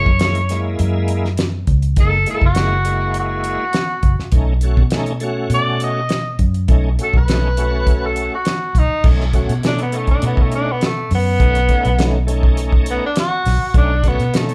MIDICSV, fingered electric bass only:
0, 0, Header, 1, 3, 480
1, 0, Start_track
1, 0, Tempo, 588813
1, 1613, Time_signature, 4, 2, 24, 8
1, 11857, End_track
2, 0, Start_track
2, 0, Title_t, "Fingered electric bass"
2, 0, Program_c, 0, 33
2, 52, Note_on_c, 0, 42, 90
2, 618, Note_off_c, 0, 42, 0
2, 649, Note_on_c, 0, 42, 84
2, 1339, Note_off_c, 0, 42, 0
2, 1365, Note_on_c, 0, 37, 93
2, 1590, Note_off_c, 0, 37, 0
2, 1605, Note_on_c, 0, 30, 86
2, 1830, Note_off_c, 0, 30, 0
2, 1972, Note_on_c, 0, 30, 80
2, 2903, Note_off_c, 0, 30, 0
2, 3285, Note_on_c, 0, 30, 86
2, 3404, Note_off_c, 0, 30, 0
2, 3524, Note_on_c, 0, 35, 94
2, 3865, Note_off_c, 0, 35, 0
2, 3890, Note_on_c, 0, 47, 86
2, 4458, Note_off_c, 0, 47, 0
2, 4482, Note_on_c, 0, 47, 95
2, 5176, Note_off_c, 0, 47, 0
2, 5211, Note_on_c, 0, 42, 87
2, 5434, Note_off_c, 0, 42, 0
2, 5452, Note_on_c, 0, 35, 94
2, 5675, Note_off_c, 0, 35, 0
2, 5818, Note_on_c, 0, 35, 81
2, 6747, Note_off_c, 0, 35, 0
2, 7132, Note_on_c, 0, 35, 89
2, 7248, Note_off_c, 0, 35, 0
2, 7371, Note_on_c, 0, 35, 82
2, 7709, Note_off_c, 0, 35, 0
2, 7735, Note_on_c, 0, 47, 86
2, 8300, Note_off_c, 0, 47, 0
2, 8337, Note_on_c, 0, 47, 80
2, 9023, Note_off_c, 0, 47, 0
2, 9058, Note_on_c, 0, 42, 98
2, 9277, Note_off_c, 0, 42, 0
2, 9293, Note_on_c, 0, 35, 91
2, 9514, Note_off_c, 0, 35, 0
2, 9664, Note_on_c, 0, 35, 82
2, 10587, Note_off_c, 0, 35, 0
2, 10976, Note_on_c, 0, 35, 102
2, 11089, Note_off_c, 0, 35, 0
2, 11204, Note_on_c, 0, 35, 93
2, 11543, Note_off_c, 0, 35, 0
2, 11573, Note_on_c, 0, 47, 88
2, 11857, Note_off_c, 0, 47, 0
2, 11857, End_track
3, 0, Start_track
3, 0, Title_t, "Muted fingered electric bass strokes"
3, 3421, Note_on_c, 9, 29, 38
3, 3502, Note_off_c, 9, 29, 0
3, 7264, Note_on_c, 9, 29, 38
3, 7345, Note_off_c, 9, 29, 0
3, 11857, End_track
0, 0, End_of_file